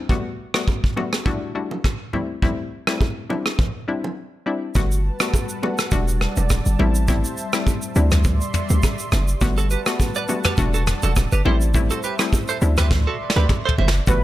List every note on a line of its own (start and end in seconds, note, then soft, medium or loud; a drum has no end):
0.09 0.32 G3 medium
0.09 0.32 A3 medium
0.09 0.32 B3 medium
0.09 0.32 F#4 loud
0.09 kick loud
0.09 low conga medium
0.54 0.94 G3 medium
0.54 0.94 A3 medium
0.54 0.94 B3 medium
0.54 0.94 F#4 medium
0.54 cross-stick loud
0.68 kick medium
0.68 high bongo medium
0.84 kick medium
0.96 1.24 G3 medium
0.96 1.24 A3 medium
0.96 1.24 B3 medium
0.96 1.24 F#4 medium
0.96 low bongo medium
1.13 cross-stick loud
1.13 high bongo medium
1.26 1.53 G3 medium
1.26 1.53 A3 medium
1.26 1.53 D4 medium
1.26 1.53 E4 medium
1.26 1.53 F#4 loud
1.26 kick loud
1.26 low conga medium
1.55 1.78 G3 medium
1.55 1.78 A3 medium
1.55 1.78 D4 medium
1.55 1.78 E4 medium
1.55 1.78 F#4 medium
1.71 low bongo medium
1.84 kick medium
1.84 cross-stick medium
1.84 high bongo medium
2.13 2.36 G3 medium
2.13 2.36 A3 medium
2.13 2.36 C4 medium
2.13 2.36 E4 medium
2.13 low conga medium
2.42 2.65 G3 medium
2.42 2.65 A3 medium
2.42 2.65 C4 medium
2.42 2.65 E4 loud
2.42 kick loud
2.42 low conga medium
2.87 3.27 G3 medium
2.87 3.27 A3 medium
2.87 3.27 C4 medium
2.87 3.27 E4 medium
2.87 cross-stick loud
3.01 kick medium
3.01 high bongo medium
3.30 3.57 G3 medium
3.30 3.57 C4 medium
3.30 3.57 D4 medium
3.30 3.57 E4 medium
3.30 low bongo medium
3.46 cross-stick loud
3.46 high bongo medium
3.59 kick loud
3.59 low conga medium
3.88 4.11 G3 medium
3.88 4.11 C4 medium
3.88 4.11 D4 medium
3.88 4.11 E4 medium
4.04 low bongo medium
4.46 4.69 G3 medium
4.46 4.69 C4 medium
4.46 4.69 D4 medium
4.46 4.69 E4 medium
4.75 5.10 G1 loud
4.75 4.98 G3 medium
4.75 14.04 G3 medium
4.75 4.98 A3 medium
4.75 4.98 B3 medium
4.75 4.98 F#4 loud
4.75 5.91 B4 medium
4.75 6.77 F#5 medium
4.75 5.91 A5 medium
4.75 kick loud
4.75 low conga medium
4.75 shaker medium
4.92 shaker medium
5.20 5.60 G3 medium
5.20 5.60 A3 medium
5.20 5.60 B3 medium
5.20 5.60 F#4 medium
5.20 cross-stick loud
5.20 shaker medium
5.34 kick medium
5.34 high bongo medium
5.34 shaker medium
5.49 shaker soft
5.63 5.90 G3 medium
5.63 5.90 A3 medium
5.63 5.90 B3 medium
5.63 5.90 F#4 medium
5.63 high bongo medium
5.63 low bongo medium
5.78 cross-stick loud
5.78 shaker medium
5.92 6.27 E1 loud
5.92 6.78 G3 loud
5.92 6.78 A3 medium
5.92 6.79 D4 medium
5.92 6.80 F#4 loud
5.92 6.79 D5 medium
5.92 7.94 A5 medium
5.92 kick loud
5.92 low conga medium
5.92 shaker medium
6.08 shaker medium
6.21 cross-stick medium
6.36 6.60 E1 medium
6.36 low bongo medium
6.36 shaker medium
6.50 kick medium
6.50 cross-stick medium
6.50 high bongo medium
6.50 shaker medium
6.66 6.76 G1 medium
6.66 shaker medium
6.79 7.24 A1 loud
6.79 7.06 G3 loud
6.79 7.06 A3 medium
6.79 7.06 C4 medium
6.79 7.07 E4 loud
6.79 7.95 C5 medium
6.79 7.95 E5 medium
6.79 low bongo medium
6.79 low conga medium
6.95 shaker medium
7.08 7.31 G3 medium
7.08 7.31 A3 medium
7.08 7.31 C4 medium
7.08 7.31 E4 loud
7.08 kick loud
7.08 low conga medium
7.08 shaker medium
7.25 shaker medium
7.37 shaker medium
7.53 7.93 G3 medium
7.53 7.93 A3 medium
7.53 7.93 C4 medium
7.53 7.93 E4 medium
7.53 cross-stick loud
7.53 shaker medium
7.67 kick medium
7.67 high bongo medium
7.67 shaker medium
7.82 shaker soft
7.95 8.41 D2 loud
7.95 8.23 G3 medium
7.95 8.23 C4 medium
7.95 8.23 D4 medium
7.95 8.23 E4 medium
7.95 9.40 D5 medium
7.95 9.40 E5 medium
7.95 9.40 C6 medium
7.95 high bongo medium
7.95 low bongo medium
7.95 shaker soft
8.11 cross-stick loud
8.11 mid tom medium
8.11 shaker medium
8.25 kick loud
8.25 low conga medium
8.25 shaker medium
8.41 shaker medium
8.54 mid tom medium
8.54 shaker medium
8.69 8.80 D2 medium
8.69 low bongo medium
8.69 shaker medium
8.83 kick medium
8.83 cross-stick medium
8.83 high bongo medium
8.83 shaker medium
8.99 shaker medium
9.12 9.35 F#1 loud
9.12 cross-stick medium
9.12 low bongo medium
9.12 low conga medium
9.12 shaker medium
9.28 shaker medium
9.41 9.76 G1 loud
9.41 9.64 G3 medium
9.41 9.64 A3 medium
9.41 9.64 B3 medium
9.41 9.64 F#4 loud
9.41 10.57 B4 medium
9.41 11.43 F#5 medium
9.41 12.59 A5 medium
9.41 kick loud
9.41 low conga medium
9.41 shaker medium
9.58 9.66 F#4 medium
9.58 9.66 A4 medium
9.58 shaker medium
9.70 9.81 G4 medium
9.70 9.80 B4 medium
9.70 shaker medium
9.86 10.26 G3 medium
9.86 10.26 A3 medium
9.86 10.26 B3 medium
9.86 10.26 F#4 medium
9.86 cross-stick loud
9.86 shaker medium
10.00 kick medium
10.00 high bongo medium
10.00 shaker medium
10.15 10.24 B4 medium
10.15 10.24 D5 medium
10.15 shaker soft
10.28 10.56 G3 medium
10.28 10.56 A3 medium
10.28 10.56 B3 medium
10.28 10.56 F#4 medium
10.28 high bongo medium
10.28 low bongo medium
10.28 shaker soft
10.44 10.54 G4 medium
10.44 10.53 B4 medium
10.44 cross-stick loud
10.44 mid tom medium
10.44 shaker medium
10.58 10.93 E1 loud
10.58 11.44 G3 medium
10.58 11.44 A3 medium
10.58 11.46 D4 medium
10.58 11.46 F#4 loud
10.58 11.44 D5 medium
10.58 kick loud
10.58 low conga medium
10.58 shaker medium
10.74 10.83 F#4 medium
10.74 10.82 A4 medium
10.74 shaker medium
10.87 cross-stick medium
10.87 mid tom medium
10.87 shaker medium
11.03 11.26 E1 medium
11.03 11.12 F#4 medium
11.03 11.11 A4 medium
11.03 low bongo medium
11.03 shaker medium
11.16 kick medium
11.16 cross-stick medium
11.16 high bongo medium
11.16 shaker medium
11.32 11.42 G1 medium
11.32 11.41 G4 medium
11.32 11.40 B4 medium
11.32 shaker medium
11.45 11.90 A1 loud
11.45 11.72 G3 loud
11.45 11.72 A3 medium
11.45 11.72 C4 medium
11.45 11.73 E4 loud
11.45 11.56 A4 medium
11.45 12.61 C5 medium
11.45 11.55 C5 medium
11.45 14.05 E5 medium
11.45 low bongo medium
11.45 low conga medium
11.61 shaker medium
11.74 11.97 G3 medium
11.74 11.97 A3 medium
11.74 11.97 C4 medium
11.74 11.97 E4 loud
11.74 kick loud
11.74 low conga medium
11.74 shaker medium
11.91 11.99 F#4 medium
11.91 11.99 A4 medium
11.91 shaker medium
12.03 12.14 G4 medium
12.03 12.13 B4 medium
12.03 shaker medium
12.19 12.59 G3 medium
12.19 12.59 A3 medium
12.19 12.59 C4 medium
12.19 12.59 E4 medium
12.19 cross-stick loud
12.19 shaker medium
12.33 kick medium
12.33 high bongo medium
12.33 shaker medium
12.48 12.57 A4 medium
12.48 12.57 C5 medium
12.48 shaker soft
12.61 13.07 D2 loud
12.61 12.89 G3 medium
12.61 12.89 C4 medium
12.61 12.89 D4 medium
12.61 12.89 E4 medium
12.61 14.06 D5 medium
12.61 14.06 C6 medium
12.61 high bongo medium
12.61 low bongo medium
12.61 shaker soft
12.77 12.87 G4 medium
12.77 12.86 B4 medium
12.77 cross-stick loud
12.77 mid tom medium
12.77 shaker medium
12.91 kick loud
12.91 snare medium
12.91 low conga medium
13.07 13.16 F#4 medium
13.07 13.15 A4 medium
13.30 snare medium
13.36 13.46 D2 medium
13.36 13.45 G4 medium
13.36 13.44 B4 medium
13.36 low bongo medium
13.49 kick loud
13.49 mid tom medium
13.49 high bongo medium
13.65 13.74 A4 medium
13.65 13.73 C5 medium
13.65 floor tom loud
13.78 14.01 F#1 loud
13.78 13.89 C5 medium
13.78 13.88 E5 medium
13.78 low bongo medium
13.78 low conga medium
13.88 snare medium
14.07 14.24 G1 loud
14.07 14.24 D3 medium
14.07 14.24 G3 medium
14.07 14.24 A3 medium
14.07 14.24 B3 medium
14.07 14.24 F#4 medium
14.07 14.24 F#4 loud
14.07 14.24 B4 loud
14.07 kick loud
14.07 low conga medium
14.07 shaker medium